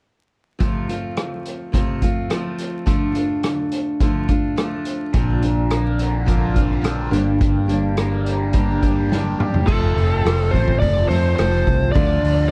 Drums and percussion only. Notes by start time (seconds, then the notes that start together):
0.60 kick, closed hi-hat
0.89 closed hi-hat
1.17 cross-stick, closed hi-hat
1.45 closed hi-hat
1.74 kick, closed hi-hat
2.02 kick, closed hi-hat
2.30 cross-stick, closed hi-hat
2.59 closed hi-hat
2.87 kick, closed hi-hat
3.15 closed hi-hat
3.43 cross-stick, closed hi-hat
3.72 closed hi-hat
4.00 kick, closed hi-hat
4.29 kick, closed hi-hat
4.57 cross-stick, closed hi-hat
4.85 closed hi-hat
5.13 kick, closed hi-hat
5.42 closed hi-hat
5.71 cross-stick, closed hi-hat
5.99 closed hi-hat
6.28 kick, closed hi-hat
6.56 kick, closed hi-hat
6.84 cross-stick, closed hi-hat
7.13 closed hi-hat
7.41 kick, closed hi-hat
7.69 closed hi-hat
7.97 cross-stick, closed hi-hat
8.26 closed hi-hat
8.53 kick, closed hi-hat
8.83 kick, closed hi-hat
9.12 snare
9.40 mid tom
9.54 floor tom
9.68 kick, crash
9.98 open hi-hat
10.26 cross-stick, open hi-hat
10.54 kick, open hi-hat
10.68 kick
10.82 kick, open hi-hat
11.11 open hi-hat
11.38 cross-stick, open hi-hat
11.67 kick, open hi-hat
11.95 kick, open hi-hat
12.24 open hi-hat